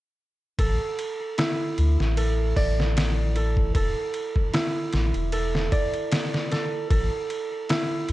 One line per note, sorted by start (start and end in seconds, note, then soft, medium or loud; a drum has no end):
0.59 0.78 A1 medium
0.59 2.17 A4 medium
0.59 kick medium
0.59 ride medium
0.99 ride medium
1.38 3.99 E4 medium
1.38 snare loud
1.38 ride medium
1.78 1.97 D2 medium
1.78 ride medium
2.00 2.54 A1 medium
2.00 snare soft
2.17 3.36 A4 medium
2.17 ride medium
2.56 3.72 A1 medium
2.56 4.41 D5 medium
2.56 kick medium
2.56 open hi-hat medium
2.80 snare soft
2.97 snare loud
2.97 ride medium
3.36 3.75 A4 medium
3.36 ride medium
3.57 kick medium
3.75 3.94 E1 medium
3.75 5.32 A4 medium
3.75 kick medium
3.75 ride medium
4.14 ride medium
4.36 kick medium
4.53 7.15 E4 medium
4.53 snare loud
4.53 ride medium
4.93 5.13 A1 medium
4.93 snare soft
4.93 ride medium
5.14 5.69 E1 medium
5.14 ride soft
5.32 6.51 A4 medium
5.32 ride medium
5.55 snare soft
5.72 7.57 D5 medium
5.72 kick medium
5.72 ride medium
5.93 ride soft
6.11 snare loud
6.11 ride medium
6.34 snare soft
6.51 6.90 A4 medium
6.51 snare soft
6.51 ride medium
6.90 7.10 A1 loud
6.90 8.12 A4 medium
6.90 kick loud
6.90 ride medium
7.30 ride medium
7.69 8.12 E4 loud
7.69 snare loud
7.69 ride medium
8.09 8.12 D2 medium
8.09 ride medium